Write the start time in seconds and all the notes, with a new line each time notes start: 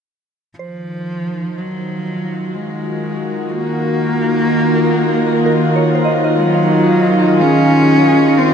0.58 D#3 F3 C5
1.00 D#4
1.57 F#3
1.72 F4
2.13 F#4
2.54 G#3
2.58 A#4
3.52 A#3
5.46 A#4
5.76 C#5
5.95 C5
6.05 D#5
6.24 D#5
6.36 G#3
6.43 F#3
6.54 F5
7.16 G#4
7.40 C#4
7.75 G#4
8.38 C4